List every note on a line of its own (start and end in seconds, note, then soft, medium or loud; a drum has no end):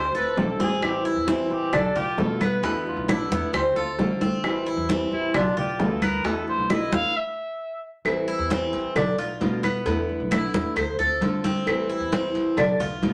0.00 0.14 D2 loud
0.00 0.14 C5 medium
0.00 0.16 C5 loud
0.14 0.36 D2 medium
0.14 0.37 A3 soft
0.14 0.37 C4 soft
0.14 0.37 F4 medium
0.14 0.59 A4 medium
0.14 0.41 B4 loud
0.14 high bongo soft
0.14 high conga soft
0.37 0.58 B1 medium
0.37 0.59 D3 medium
0.37 0.60 A3 medium
0.37 0.59 C4 medium
0.37 0.58 F4 medium
0.37 0.61 A4 medium
0.37 high bongo soft
0.37 low bongo loud
0.37 high conga medium
0.59 0.80 A1 medium
0.59 0.82 A3 soft
0.59 1.04 C4 medium
0.59 0.82 C4 soft
0.59 0.81 F4 soft
0.59 0.86 G#4 medium
0.59 high bongo medium
0.59 high conga medium
0.82 1.15 A1 medium
0.82 1.26 E3 medium
0.82 1.26 G3 medium
0.82 1.27 C4 medium
0.82 1.28 E4 medium
0.82 1.06 G4 medium
0.82 high bongo medium
0.82 high conga soft
0.82 claves medium
1.05 1.22 B3 soft
1.05 1.27 E4 medium
1.05 high bongo soft
1.05 high conga soft
1.16 1.49 E2 medium
1.27 1.72 E3 medium
1.27 1.72 G3 medium
1.27 1.72 C4 medium
1.27 1.73 C4 medium
1.27 1.73 E4 medium
1.27 1.53 E4 medium
1.27 high bongo medium
1.27 high conga medium
1.50 1.61 A1 medium
1.50 1.76 G4 loud
1.50 high bongo soft
1.50 high conga soft
1.72 1.94 B1 loud
1.72 1.95 D4 medium
1.72 1.95 A4 loud
1.72 muted nylon-string guitar stroke medium
1.72 high bongo medium
1.72 high conga soft
1.72 low conga medium
1.72 claves medium
1.95 2.17 B1 medium
1.95 2.17 A3 soft
1.95 2.18 B3 soft
1.95 2.17 F4 soft
1.95 2.39 F4 medium
1.95 2.21 G4 loud
1.95 high bongo soft
1.95 high conga soft
1.95 low conga medium
2.18 2.40 B2 medium
2.18 2.61 B2 loud
2.18 2.40 D3 medium
2.18 2.40 A3 medium
2.18 2.40 B3 medium
2.18 2.39 F4 medium
2.18 2.43 A4 medium
2.18 high bongo soft
2.18 low bongo medium
2.18 high conga medium
2.40 2.62 A3 soft
2.40 2.62 B3 loud
2.40 2.63 B3 soft
2.40 2.62 F4 soft
2.40 2.67 B4 loud
2.40 high conga medium
2.40 claves medium
2.63 2.95 E2 loud
2.63 3.07 D3 medium
2.63 3.08 A3 medium
2.63 3.07 B3 medium
2.63 3.08 B3 medium
2.63 3.09 E4 medium
2.63 2.87 A4 medium
2.63 high bongo medium
2.86 3.11 F4 medium
2.86 high bongo soft
2.86 high conga soft
2.97 3.29 B1 medium
3.08 3.53 D3 medium
3.08 3.53 A3 medium
3.08 3.54 B3 medium
3.08 3.31 D4 medium
3.08 3.52 E4 medium
3.08 3.54 E4 medium
3.08 high bongo medium
3.08 high conga loud
3.08 claves medium
3.30 3.42 E2 medium
3.30 3.57 B3 medium
3.30 high bongo soft
3.30 high conga loud
3.53 3.75 D2 loud
3.53 3.77 C4 medium
3.53 3.76 C5 medium
3.53 muted nylon-string guitar stroke medium
3.53 high bongo medium
3.53 high conga soft
3.53 claves medium
3.75 3.97 D2 medium
3.75 3.98 A3 soft
3.75 3.99 C4 soft
3.75 3.98 F4 soft
3.75 3.91 F4 medium
3.75 4.20 A4 medium
3.75 high bongo soft
3.75 high conga soft
3.98 4.42 D3 loud
3.98 4.20 D3 medium
3.98 4.21 A3 medium
3.98 4.21 C4 medium
3.98 4.20 F4 medium
3.98 high bongo soft
3.98 low bongo medium
3.98 high conga medium
4.21 4.44 A3 soft
4.21 4.65 C4 medium
4.21 4.44 C4 soft
4.21 4.43 F4 soft
4.21 high conga medium
4.44 4.76 A1 medium
4.44 4.88 E3 medium
4.44 4.89 G3 medium
4.44 4.89 C4 medium
4.44 4.90 E4 medium
4.44 high bongo medium
4.44 high conga soft
4.44 claves medium
4.66 4.89 E4 medium
4.66 high bongo soft
4.66 high conga soft
4.77 5.10 E2 medium
4.89 5.33 E3 medium
4.89 5.34 G3 medium
4.89 5.33 C4 medium
4.89 5.34 C4 medium
4.89 5.35 E4 medium
4.89 high bongo medium
4.89 high conga medium
5.11 5.22 A1 medium
5.11 5.38 E4 loud
5.11 high bongo soft
5.11 high conga soft
5.34 5.56 B1 loud
5.34 5.56 D4 medium
5.34 5.58 F4 medium
5.34 muted nylon-string guitar stroke medium
5.34 high bongo medium
5.34 high conga soft
5.34 low conga medium
5.34 claves medium
5.57 5.78 B1 medium
5.57 5.79 A3 soft
5.57 5.79 B3 soft
5.57 5.79 F4 medium
5.57 6.01 F4 medium
5.57 5.83 G4 medium
5.57 high bongo soft
5.57 high conga soft
5.57 low conga medium
5.79 6.22 D2 loud
5.79 6.01 B2 medium
5.79 6.01 D3 medium
5.79 6.02 A3 medium
5.79 6.02 B3 medium
5.79 6.01 F4 medium
5.79 6.05 A4 medium
5.79 high bongo soft
5.79 low bongo medium
5.79 high conga medium
6.02 6.24 A3 soft
6.02 6.23 B3 medium
6.02 6.25 B3 soft
6.02 6.24 F4 soft
6.02 6.28 A#4 loud
6.02 high conga medium
6.02 claves medium
6.24 6.57 E2 medium
6.24 6.68 D3 medium
6.24 6.69 A3 medium
6.24 6.68 B3 medium
6.24 6.70 B3 medium
6.24 6.70 E4 medium
6.24 6.48 A4 medium
6.24 high bongo medium
6.24 high conga soft
6.48 6.73 C5 medium
6.48 high bongo soft
6.48 high conga soft
6.58 6.90 B1 medium
6.70 7.14 D3 medium
6.70 7.15 A3 medium
6.70 7.15 B3 medium
6.70 7.14 E4 medium
6.70 7.15 E4 medium
6.70 6.95 D#5 loud
6.70 high bongo medium
6.70 high conga medium
6.70 claves medium
6.92 7.03 E2 medium
6.92 7.18 F5 loud
6.92 high bongo soft
6.92 high conga loud
7.16 7.84 E5 loud
8.05 8.37 A1 medium
8.05 8.49 E3 medium
8.05 8.50 G3 medium
8.05 8.50 C4 medium
8.05 8.51 E4 medium
8.05 cowbell medium
8.05 high conga soft
8.05 claves medium
8.28 8.50 E4 medium
8.28 high conga soft
8.39 8.71 E2 medium
8.50 8.95 E3 medium
8.50 8.95 G3 medium
8.50 8.94 C4 medium
8.50 8.96 C4 medium
8.50 8.96 E4 medium
8.50 cowbell medium
8.50 high conga medium
8.73 8.84 A1 medium
8.73 cowbell medium
8.73 high conga soft
8.95 9.17 B1 loud
8.95 9.18 D4 medium
8.95 muted nylon-string guitar stroke medium
8.95 cowbell loud
8.95 high conga soft
8.95 low conga medium
8.95 claves medium
9.18 9.40 B1 medium
9.18 9.40 A3 soft
9.18 9.41 B3 soft
9.18 9.40 F4 medium
9.18 9.62 F4 medium
9.18 cowbell medium
9.18 high conga soft
9.41 9.63 B2 medium
9.41 9.84 B2 loud
9.41 9.63 D3 medium
9.41 9.63 A3 medium
9.41 9.63 B3 medium
9.41 9.62 F4 medium
9.41 cowbell medium
9.41 high conga medium
9.63 9.86 A3 soft
9.63 9.85 B3 medium
9.63 9.86 B3 soft
9.63 9.85 F4 soft
9.63 high conga medium
9.63 claves medium
9.86 10.18 E2 loud
9.86 10.30 D3 medium
9.86 10.31 A3 medium
9.86 10.30 B3 medium
9.86 10.31 B3 medium
9.86 10.32 E4 medium
9.86 cowbell loud
9.86 high conga soft
10.09 high conga soft
10.20 10.52 B1 medium
10.31 10.76 D3 medium
10.31 10.76 A3 medium
10.31 10.76 B3 medium
10.31 10.75 E4 medium
10.31 10.77 E4 medium
10.31 cowbell medium
10.31 high conga loud
10.31 claves medium
10.53 10.64 E2 medium
10.53 cowbell medium
10.53 high conga loud
10.76 10.98 D2 loud
10.76 10.98 C5 medium
10.76 muted nylon-string guitar stroke medium
10.76 cowbell loud
10.76 high conga soft
10.76 claves medium
10.98 11.20 D2 medium
10.98 11.22 A3 soft
10.98 11.22 C4 soft
10.98 11.21 F4 medium
10.98 11.43 A4 medium
10.98 high conga soft
11.21 11.64 D3 loud
11.21 11.44 D3 medium
11.21 11.44 A3 medium
11.21 11.44 C4 medium
11.21 11.43 F4 medium
11.21 cowbell medium
11.21 high conga medium
11.44 11.67 A3 soft
11.44 11.88 C4 medium
11.44 11.67 C4 soft
11.44 11.66 F4 soft
11.44 cowbell medium
11.44 high conga medium
11.66 11.99 A1 medium
11.66 12.11 E3 medium
11.66 12.11 G3 medium
11.66 12.12 C4 medium
11.66 12.13 E4 medium
11.66 cowbell loud
11.66 high conga soft
11.66 claves medium
11.90 12.12 E4 medium
11.90 high conga soft
12.00 12.33 E2 medium
12.12 12.57 E3 medium
12.12 12.57 G3 medium
12.12 12.56 C4 medium
12.12 12.57 C4 medium
12.12 12.58 E4 medium
12.12 cowbell medium
12.12 high conga loud
12.34 12.45 A1 medium
12.34 cowbell medium
12.34 high conga soft
12.57 12.79 B1 loud
12.57 12.80 D4 medium
12.57 muted nylon-string guitar stroke medium
12.57 cowbell loud
12.57 high conga soft
12.57 low conga medium
12.57 claves medium
12.79 13.01 B1 medium
12.79 13.02 A3 soft
12.79 13.03 B3 soft
12.79 13.02 F4 soft
12.79 13.13 F4 medium
12.79 cowbell medium
12.79 high conga soft
12.79 low conga medium
13.02 13.13 B2 medium
13.02 13.13 D3 medium
13.02 13.13 A3 medium
13.02 13.13 B3 medium
13.02 13.13 F4 medium
13.02 cowbell medium
13.02 high conga medium